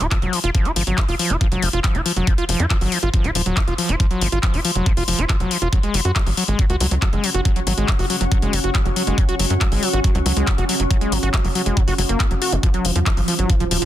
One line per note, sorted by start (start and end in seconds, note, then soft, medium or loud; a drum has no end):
0.00 0.07 D#1 medium
0.00 0.07 F4 medium
0.00 5.73 C6 medium
0.00 closed hi-hat medium
0.11 0.18 F3 loud
0.11 kick loud
0.11 clap loud
0.11 closed hi-hat medium
0.22 0.29 F1 medium
0.22 0.34 F#3 medium
0.22 closed hi-hat medium
0.33 0.39 F3 medium
0.33 open hi-hat loud
0.44 0.51 F1 medium
0.44 0.50 F4 loud
0.44 closed hi-hat medium
0.55 0.67 F3 medium
0.55 kick loud
0.55 closed hi-hat medium
0.65 0.72 F4 medium
0.65 closed hi-hat medium
0.76 0.83 G#1 medium
0.76 0.83 F3 loud
0.76 open hi-hat loud
0.87 0.94 G#1 medium
0.87 0.99 F#3 medium
0.87 closed hi-hat medium
0.98 1.04 F3 medium
0.98 kick loud
0.98 clap loud
0.98 closed hi-hat medium
1.09 1.15 F1 medium
1.09 1.15 F4 loud
1.09 open hi-hat medium
1.19 1.32 F3 medium
1.19 open hi-hat loud
1.30 1.37 F1 medium
1.30 1.37 F4 medium
1.30 closed hi-hat medium
1.41 1.47 F3 loud
1.41 kick loud
1.41 closed hi-hat medium
1.52 1.59 F1 medium
1.52 1.64 F#3 medium
1.52 closed hi-hat medium
1.62 1.69 F1 medium
1.62 1.69 F3 medium
1.62 open hi-hat loud
1.73 1.80 F1 medium
1.73 1.80 F4 loud
1.73 closed hi-hat medium
1.84 1.96 F3 medium
1.84 kick loud
1.84 clap loud
1.84 closed hi-hat medium
1.95 2.02 F1 medium
1.95 2.01 F4 medium
1.95 closed hi-hat medium
2.06 2.12 F3 loud
2.06 open hi-hat loud
2.16 2.23 F1 medium
2.16 2.29 F#3 medium
2.16 closed hi-hat medium
2.27 2.34 F3 medium
2.27 kick loud
2.27 closed hi-hat medium
2.38 2.44 F4 loud
2.38 closed hi-hat medium
2.49 2.56 F1 medium
2.49 2.61 F3 medium
2.49 open hi-hat loud
2.60 2.66 F2 medium
2.60 2.66 F4 medium
2.60 closed hi-hat medium
2.70 2.77 F3 loud
2.70 kick loud
2.70 clap loud
2.70 closed hi-hat medium
2.81 2.88 G#1 medium
2.81 2.94 F#3 medium
2.81 open hi-hat medium
2.92 2.98 F3 medium
2.92 open hi-hat loud
3.03 3.10 G#1 medium
3.03 3.09 F4 loud
3.03 closed hi-hat soft
3.14 3.26 F3 medium
3.14 kick loud
3.14 closed hi-hat medium
3.24 3.31 D#1 medium
3.24 3.31 F4 medium
3.24 closed hi-hat medium
3.35 3.42 D#1 medium
3.35 3.42 F3 loud
3.35 open hi-hat loud
3.46 3.53 D#1 medium
3.46 3.58 F#3 medium
3.46 closed hi-hat medium
3.57 3.63 F3 medium
3.57 kick loud
3.57 clap loud
3.57 closed hi-hat medium
3.68 3.74 F1 medium
3.68 3.74 F4 loud
3.68 closed hi-hat soft
3.78 3.91 F3 medium
3.78 open hi-hat loud
3.89 3.96 F1 medium
3.89 3.96 F4 medium
3.89 closed hi-hat medium
4.00 4.06 F3 loud
4.00 kick loud
4.00 closed hi-hat medium
4.11 4.23 F#3 medium
4.11 closed hi-hat soft
4.21 4.28 G#1 medium
4.21 4.28 F3 medium
4.21 open hi-hat loud
4.32 4.39 G#1 medium
4.32 4.39 F4 loud
4.32 closed hi-hat soft
4.43 4.55 F3 medium
4.43 kick loud
4.43 clap loud
4.43 closed hi-hat medium
4.54 4.61 F1 medium
4.54 4.60 F4 medium
4.54 open hi-hat medium
4.65 4.71 F3 loud
4.65 open hi-hat loud
4.75 4.82 F1 medium
4.75 4.88 F#3 medium
4.75 closed hi-hat soft
4.86 4.93 F3 medium
4.86 kick loud
4.86 closed hi-hat medium
4.97 5.04 F1 medium
4.97 5.03 F4 loud
4.97 open hi-hat medium
5.08 5.15 F1 medium
5.08 5.20 F3 medium
5.08 open hi-hat loud
5.19 5.25 F1 medium
5.19 5.25 F4 medium
5.19 closed hi-hat soft
5.29 5.36 F3 loud
5.29 kick loud
5.29 clap loud
5.29 closed hi-hat medium
5.40 5.47 F1 medium
5.40 5.53 F#3 medium
5.40 closed hi-hat soft
5.51 5.57 F3 medium
5.51 open hi-hat loud
5.62 5.69 F1 medium
5.62 5.68 F4 loud
5.62 closed hi-hat medium
5.73 5.79 F#3 loud
5.73 12.63 C#4 medium
5.73 kick loud
5.73 closed hi-hat medium
5.81 5.96 G#3 medium
5.81 12.63 F#4 medium
5.81 12.63 F#5 medium
5.81 closed hi-hat soft
5.94 6.01 F#1 medium
5.94 6.01 F#3 medium
5.94 open hi-hat loud
6.05 6.12 F#2 medium
6.05 6.11 F#4 loud
6.05 closed hi-hat soft
6.16 6.22 F#3 medium
6.16 kick loud
6.16 clap loud
6.16 closed hi-hat medium
6.27 6.33 G#1 medium
6.27 6.30 F#3 medium
6.27 open hi-hat medium
6.37 6.44 F#3 loud
6.37 open hi-hat loud
6.48 6.55 G#1 medium
6.48 6.60 G#3 medium
6.48 closed hi-hat soft
6.57 6.65 F#3 medium
6.57 12.63 C#6 medium
6.57 kick loud
6.57 closed hi-hat medium
6.70 6.77 C#2 medium
6.70 6.76 F#4 loud
6.70 closed hi-hat soft
6.80 6.87 C#2 medium
6.80 6.87 F#3 medium
6.80 open hi-hat loud
6.91 6.98 C#2 medium
6.91 6.95 F#3 medium
6.91 closed hi-hat medium
7.02 7.08 F#3 loud
7.02 kick loud
7.02 clap loud
7.02 closed hi-hat medium
7.13 7.20 F#1 medium
7.13 7.25 G#3 medium
7.13 closed hi-hat soft
7.24 7.30 F#3 medium
7.24 open hi-hat loud
7.34 7.41 F#1 medium
7.34 7.41 F#4 loud
7.34 closed hi-hat soft
7.45 7.52 F#3 medium
7.45 kick loud
7.45 closed hi-hat medium
7.56 7.60 F#3 medium
7.56 closed hi-hat medium
7.67 7.74 G#1 medium
7.67 7.73 F#3 loud
7.67 open hi-hat loud
7.78 7.84 G#1 medium
7.78 7.90 G#3 medium
7.78 closed hi-hat medium
7.88 7.95 F#3 medium
7.88 kick loud
7.88 clap loud
7.88 closed hi-hat medium
7.99 8.06 F#1 medium
7.99 8.06 F#4 loud
7.99 open hi-hat medium
8.10 8.16 F#3 medium
8.10 open hi-hat loud
8.21 8.28 F#1 medium
8.21 8.25 F#3 medium
8.21 closed hi-hat medium
8.32 8.38 F#3 loud
8.32 kick loud
8.32 closed hi-hat medium
8.42 8.49 F#1 medium
8.42 8.55 G#3 medium
8.42 closed hi-hat medium
8.53 8.60 F#1 loud
8.53 8.60 F#3 medium
8.53 open hi-hat loud
8.64 8.71 F#1 medium
8.64 8.70 F#4 loud
8.64 closed hi-hat medium
8.75 8.81 F#3 medium
8.75 kick loud
8.75 clap loud
8.75 closed hi-hat medium
8.86 8.92 F#1 medium
8.86 8.89 F#3 medium
8.86 closed hi-hat medium
8.96 9.03 F#3 loud
8.96 open hi-hat loud
9.07 9.14 F#1 medium
9.07 9.19 G#3 medium
9.07 closed hi-hat medium
9.18 9.24 F#3 medium
9.18 kick loud
9.18 closed hi-hat medium
9.29 9.35 F#4 loud
9.29 closed hi-hat medium
9.39 9.46 F#1 loud
9.39 9.46 F#3 medium
9.39 open hi-hat loud
9.50 9.57 F#2 medium
9.50 9.54 F#3 medium
9.50 closed hi-hat medium
9.61 9.67 F#3 loud
9.61 kick loud
9.61 clap loud
9.61 closed hi-hat medium
9.72 9.79 G#1 medium
9.72 9.84 G#3 medium
9.72 open hi-hat medium
9.83 9.89 F#3 medium
9.83 open hi-hat loud
9.93 10.00 G#1 medium
9.93 10.00 F#4 loud
9.93 closed hi-hat medium
10.04 10.11 F#3 medium
10.04 kick loud
10.04 closed hi-hat medium
10.15 10.22 C#2 medium
10.15 10.19 F#3 medium
10.15 closed hi-hat medium
10.26 10.33 C#2 medium
10.26 10.32 F#3 loud
10.26 open hi-hat loud
10.37 10.43 C#2 medium
10.37 10.49 G#3 medium
10.37 closed hi-hat medium
10.47 10.54 F#3 medium
10.47 kick loud
10.47 clap loud
10.47 closed hi-hat medium
10.58 10.65 F#1 medium
10.58 10.65 F#4 loud
10.58 closed hi-hat medium
10.69 10.75 F#3 medium
10.69 open hi-hat loud
10.80 10.87 F#1 medium
10.80 10.84 F#3 medium
10.80 closed hi-hat medium
10.90 10.97 F#3 loud
10.90 kick loud
10.90 closed hi-hat medium
11.01 11.14 G#3 medium
11.01 closed hi-hat medium
11.12 11.19 G#1 medium
11.12 11.19 F#3 medium
11.12 open hi-hat loud
11.23 11.30 G#1 medium
11.23 11.29 F#4 loud
11.23 closed hi-hat medium
11.34 11.40 F#3 medium
11.34 kick loud
11.34 clap loud
11.34 closed hi-hat medium
11.44 11.51 F#1 medium
11.44 11.48 F#3 medium
11.44 open hi-hat medium
11.55 11.62 F#3 loud
11.55 open hi-hat loud
11.66 11.73 F#1 medium
11.66 11.78 G#3 medium
11.66 closed hi-hat medium
11.77 11.83 F#3 medium
11.77 kick loud
11.77 closed hi-hat medium
11.88 11.94 F#1 medium
11.88 11.94 F#4 loud
11.88 open hi-hat medium
11.98 12.05 F#1 medium
11.98 12.02 F#3 medium
11.98 open hi-hat loud
12.09 12.16 F#1 medium
12.09 12.19 A#3 medium
12.09 closed hi-hat medium
12.20 12.26 A#3 medium
12.20 kick loud
12.20 clap loud
12.20 closed hi-hat medium
12.31 12.38 F#1 medium
12.31 12.35 F#3 medium
12.31 closed hi-hat medium
12.42 12.54 F#4 medium
12.42 open hi-hat loud
12.52 12.59 F#1 medium
12.52 12.56 F#3 medium
12.52 closed hi-hat medium
12.63 12.70 F3 loud
12.63 13.85 F3 medium
12.63 13.85 C4 medium
12.63 kick loud
12.63 closed hi-hat medium
12.74 12.86 F#3 medium
12.74 13.85 F4 medium
12.74 closed hi-hat medium
12.85 12.92 F1 medium
12.85 12.91 F3 medium
12.85 open hi-hat loud
12.96 13.02 F2 medium
12.96 12.99 F3 loud
12.96 13.85 C6 medium
12.96 closed hi-hat medium
13.03 13.13 F3 medium
13.03 13.85 F5 medium
13.03 kick loud
13.03 clap loud
13.03 closed hi-hat medium
13.17 13.24 G#1 medium
13.17 13.21 F3 medium
13.17 open hi-hat medium
13.28 13.34 F3 loud
13.28 open hi-hat loud
13.39 13.46 G#1 medium
13.39 13.51 F#3 medium
13.39 closed hi-hat medium
13.50 13.56 F3 medium
13.50 kick loud
13.50 closed hi-hat medium
13.60 13.67 D#1 medium
13.60 13.64 F3 loud
13.60 closed hi-hat medium
13.71 13.78 D#1 medium
13.71 13.78 F3 medium
13.71 open hi-hat loud
13.82 13.85 D#1 medium
13.82 13.85 F3 medium
13.82 closed hi-hat medium